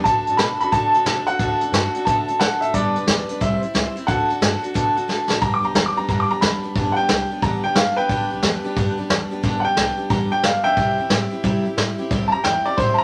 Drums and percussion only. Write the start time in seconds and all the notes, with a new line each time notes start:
0.05 kick, closed hi-hat
0.27 closed hi-hat
0.39 snare, closed hi-hat
0.60 closed hi-hat
0.72 kick, closed hi-hat
0.94 closed hi-hat
1.06 snare, closed hi-hat
1.27 closed hi-hat
1.39 kick, closed hi-hat
1.61 closed hi-hat
1.74 snare, closed hi-hat
1.95 closed hi-hat
2.07 kick, closed hi-hat
2.28 closed hi-hat
2.40 snare, closed hi-hat
2.62 closed hi-hat
2.74 kick, closed hi-hat
2.96 closed hi-hat
3.07 snare, closed hi-hat
3.29 closed hi-hat
3.41 kick, closed hi-hat
3.63 closed hi-hat
3.75 snare, closed hi-hat
3.97 closed hi-hat
4.08 kick, closed hi-hat
4.30 closed hi-hat
4.42 snare, closed hi-hat
4.64 closed hi-hat
4.75 kick, closed hi-hat
4.97 closed hi-hat
5.09 snare
5.30 snare
5.42 kick, open hi-hat
5.75 snare, open hi-hat
6.09 kick, open hi-hat
6.42 snare
6.75 kick, open hi-hat
7.09 snare, open hi-hat
7.42 kick, open hi-hat
7.75 snare
8.09 kick, open hi-hat
8.43 snare, open hi-hat
8.76 kick, open hi-hat
9.10 snare
9.44 kick, open hi-hat
9.77 snare, open hi-hat
10.10 kick, open hi-hat
10.43 snare, open hi-hat
10.77 kick, open hi-hat
11.10 snare, open hi-hat
11.44 kick, open hi-hat
11.78 snare, open hi-hat
12.11 kick, open hi-hat
12.44 snare, open hi-hat
12.78 kick, open hi-hat